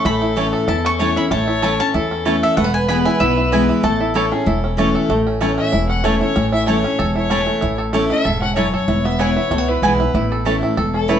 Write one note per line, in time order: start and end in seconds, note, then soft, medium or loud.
0.00 0.84 C#4 medium
0.00 0.21 E4 medium
0.00 1.00 A4 loud
0.05 0.53 A1 medium
0.05 0.65 A2 loud
0.05 0.36 A3 medium
0.05 0.68 B5 medium
0.22 0.67 E4 medium
0.36 0.66 E3 medium
0.36 0.46 A3 medium
0.36 0.82 A3 medium
0.36 0.67 A3 medium
0.36 0.67 C#4 loud
0.36 0.46 E4 medium
0.36 0.67 E4 medium
0.36 0.47 C#5 loud
0.36 0.47 A5 loud
0.53 0.96 A4 medium
0.68 1.16 E2 medium
0.68 1.28 E2 medium
0.68 1.16 E4 medium
0.68 0.84 A5 loud
0.85 1.28 C#4 medium
0.85 1.15 C#6 loud
0.99 2.39 E3 medium
0.99 1.16 E3 loud
0.99 1.09 A3 medium
0.99 1.16 A3 loud
0.99 1.16 C#4 loud
0.99 1.09 E4 medium
0.99 1.15 E4 loud
0.99 1.29 C#5 loud
0.99 1.09 C#5 medium
0.99 1.10 A5 loud
1.16 1.32 C#4 medium
1.16 1.47 E4 medium
1.16 1.31 E4 medium
1.16 1.31 B5 loud
1.30 1.79 A1 medium
1.30 1.92 A2 loud
1.30 1.76 A3 medium
1.30 1.90 C#5 loud
1.30 1.79 A5 loud
1.48 1.94 E4 medium
1.62 1.79 E3 medium
1.62 1.72 A3 loud
1.62 1.79 A3 medium
1.62 1.80 C#4 medium
1.62 1.72 E4 medium
1.62 1.79 E4 loud
1.62 2.08 A4 medium
1.62 1.73 C#5 medium
1.62 1.73 A5 loud
1.79 2.10 C#4 medium
1.79 1.95 C#4 medium
1.79 1.94 E4 medium
1.79 2.23 A5 loud
1.94 2.54 E2 loud
1.94 2.42 E2 loud
1.94 3.06 E4 medium
1.94 2.59 A4 loud
2.11 2.54 C#4 medium
2.25 2.56 E3 medium
2.25 2.35 A3 medium
2.25 2.56 A3 medium
2.25 2.56 A3 loud
2.25 2.56 C#4 loud
2.25 2.35 E4 loud
2.25 2.57 E4 loud
2.25 2.35 C#5 medium
2.25 2.36 A5 loud
2.43 2.57 A4 medium
2.43 2.57 E5 loud
2.57 3.05 E1 medium
2.57 3.18 E2 loud
2.57 2.64 A3 medium
2.57 3.85 B4 loud
2.57 2.73 F#5 medium
2.64 2.88 B3 medium
2.74 2.88 G#5 loud
2.88 3.19 E3 medium
2.88 3.19 G#3 medium
2.88 2.98 B3 medium
2.88 3.34 B3 medium
2.88 3.20 B3 loud
2.88 2.99 E4 medium
2.88 3.20 E4 medium
2.88 2.99 B4 loud
2.88 2.99 G#5 medium
2.88 3.05 B5 medium
3.05 3.20 E4 medium
3.05 3.19 G#5 medium
3.20 3.68 B1 medium
3.20 3.81 B2 loud
3.20 3.37 E4 medium
3.20 3.85 E5 medium
3.37 3.69 E4 medium
3.52 3.82 E3 medium
3.52 4.92 E3 medium
3.52 3.82 G#3 loud
3.52 3.62 B3 medium
3.52 3.83 B3 loud
3.52 3.62 E4 medium
3.52 3.83 E4 loud
3.52 3.62 B4 loud
3.52 3.62 G#5 loud
3.69 4.00 E4 medium
3.83 4.31 A1 medium
3.83 4.44 A2 loud
3.83 4.29 A3 medium
3.83 4.15 A4 loud
3.83 4.74 A5 medium
4.00 4.44 E4 medium
4.14 4.31 E3 medium
4.14 4.31 A3 medium
4.14 4.25 A3 medium
4.14 4.31 C#4 medium
4.14 4.25 E4 loud
4.14 4.30 E4 loud
4.14 4.60 A4 medium
4.14 4.33 A4 medium
4.14 4.25 C#5 loud
4.14 4.25 A5 medium
4.31 4.63 C#4 medium
4.31 4.46 C#4 medium
4.31 4.46 E4 medium
4.31 4.47 G#4 medium
4.46 4.94 E1 medium
4.46 5.06 E2 loud
4.46 4.92 E4 medium
4.46 4.77 A4 medium
4.64 5.07 C#4 soft
4.77 5.08 E3 medium
4.77 4.87 A3 medium
4.77 5.08 A3 medium
4.77 5.09 A3 medium
4.77 5.08 C#4 loud
4.77 4.88 E4 loud
4.77 5.09 E4 loud
4.77 5.07 A4 medium
4.77 4.88 C#5 loud
4.77 4.88 A5 loud
4.95 5.10 A4 medium
5.09 5.57 A1 loud
5.09 5.70 A2 loud
5.09 5.41 A3 medium
5.27 5.57 C#4 medium
5.41 5.71 E3 medium
5.41 5.50 A3 medium
5.41 6.03 A3 medium
5.41 5.71 A3 medium
5.41 5.72 C#4 loud
5.41 5.51 E4 medium
5.41 5.72 E4 loud
5.41 5.51 C#5 loud
5.41 5.51 A5 medium
5.58 5.89 C#4 medium
5.58 5.89 E5 loud
5.72 6.21 E1 medium
5.72 6.33 E2 medium
5.72 6.20 E4 medium
5.89 6.35 C#4 medium
5.89 6.06 F#5 medium
6.04 6.20 E3 medium
6.04 6.67 A3 medium
6.04 6.14 A3 medium
6.04 6.21 A3 loud
6.04 6.21 C#4 loud
6.04 6.14 E4 medium
6.04 6.20 E4 loud
6.04 6.21 C#5 medium
6.04 6.14 C#5 medium
6.04 6.14 A5 loud
6.21 6.36 C#4 medium
6.21 6.52 E4 medium
6.21 6.35 E4 medium
6.21 6.52 C#5 medium
6.36 6.84 A1 loud
6.36 6.96 A2 loud
6.36 6.84 C#4 medium
6.53 7.15 E4 medium
6.53 6.67 E5 medium
6.67 6.84 E3 medium
6.67 7.12 A3 medium
6.67 6.77 A3 medium
6.67 6.84 A3 medium
6.67 6.84 C#4 loud
6.67 6.77 E4 medium
6.67 6.83 E4 medium
6.67 6.77 C#5 loud
6.67 7.15 C#5 medium
6.67 6.77 A5 loud
6.84 7.27 C#4 medium
6.84 6.99 C#4 soft
6.84 6.98 E4 medium
6.99 7.47 E1 medium
6.99 7.59 E2 loud
6.99 7.44 A4 medium
7.15 7.61 E4 medium
7.15 7.77 C#5 medium
7.30 7.60 E3 medium
7.30 7.40 A3 medium
7.30 7.61 A3 loud
7.30 7.75 C#4 medium
7.30 7.61 C#4 loud
7.30 7.40 E4 loud
7.30 7.61 E4 loud
7.30 7.40 C#5 medium
7.30 7.40 A5 loud
7.47 7.90 A3 medium
7.61 8.10 A1 loud
7.61 8.22 A2 loud
7.61 8.10 E4 medium
7.78 8.22 A4 medium
7.93 8.10 E3 medium
7.93 8.38 A3 medium
7.93 8.03 A3 medium
7.93 8.10 A3 loud
7.93 8.10 C#4 loud
7.93 8.03 E4 loud
7.93 8.09 E4 loud
7.93 8.03 C#5 loud
7.93 8.04 A5 loud
8.10 8.25 C#4 medium
8.10 8.24 E4 medium
8.10 8.56 E4 medium
8.10 8.41 E5 loud
8.25 8.73 E1 medium
8.25 8.55 G#2 loud
8.25 8.70 A4 medium
8.42 8.85 C#4 medium
8.42 8.55 F#5 medium
8.56 8.87 F#2 loud
8.56 8.66 A3 medium
8.56 8.66 E4 medium
8.56 8.88 E4 medium
8.56 8.73 C#5 medium
8.56 8.66 C#5 medium
8.56 8.66 A5 loud
8.73 8.88 A4 medium
8.73 9.06 C#5 medium
8.88 9.36 E1 medium
8.88 9.48 E2 medium
8.88 9.19 E4 medium
9.05 9.48 B3 medium
9.05 9.21 E5 medium
9.19 9.36 E3 medium
9.19 9.36 G#3 medium
9.19 9.29 B3 medium
9.19 9.36 B3 medium
9.19 9.29 E4 loud
9.19 9.37 E4 medium
9.19 9.35 E4 loud
9.19 9.29 B4 medium
9.19 9.70 C#5 medium
9.19 9.29 G#5 loud
9.37 9.51 B3 soft
9.37 9.51 E4 medium
9.37 9.68 E4 medium
9.51 9.78 C#2 medium
9.51 10.11 B2 loud
9.51 9.58 A3 medium
9.58 9.82 B3 medium
9.68 10.00 E4 soft
9.68 10.29 B4 medium
9.82 10.09 B1 medium
9.82 9.99 E3 medium
9.82 9.99 G#3 loud
9.82 9.92 B3 medium
9.82 10.14 B3 medium
9.82 10.00 B3 loud
9.82 9.92 E4 medium
9.82 9.99 E4 loud
9.82 9.92 B4 medium
9.82 9.93 G#5 loud
10.00 10.15 B3 medium
10.00 10.15 E4 medium
10.00 10.14 E4 medium
10.14 10.62 A1 medium
10.14 10.75 A2 loud
10.14 10.62 E4 medium
10.32 10.75 A4 medium
10.45 10.75 E3 medium
10.45 10.55 A3 medium
10.45 10.76 A3 medium
10.45 10.91 A3 medium
10.45 10.76 C#4 medium
10.45 10.55 E4 loud
10.45 10.77 E4 medium
10.45 10.56 C#5 medium
10.45 10.56 A5 loud
10.63 11.09 E4 medium
10.77 11.20 E1 medium
10.77 11.20 E2 medium
10.77 11.20 A4 medium
10.94 11.20 C#4 medium
10.94 11.10 A4 medium
11.08 11.20 E3 medium
11.08 11.18 A3 medium
11.08 11.20 A3 medium
11.08 11.20 C#4 medium
11.08 11.18 E4 loud
11.08 11.20 E4 medium
11.08 11.20 E4 loud
11.08 11.20 B4 medium
11.08 11.19 C#5 medium
11.08 11.19 A5 medium